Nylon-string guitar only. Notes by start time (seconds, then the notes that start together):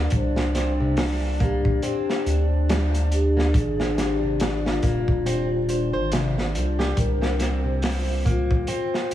0.37 C4
0.55 C4
0.80 C3
1.40 A#3
1.83 C4
2.69 G3
3.37 A#3
3.80 C4
3.98 C4
4.23 C3
4.83 A#3
5.26 C4
5.70 C5
5.93 C5
6.12 C3
6.79 G4
7.21 C4
7.40 C4
7.64 C3
8.25 A#3
8.68 C4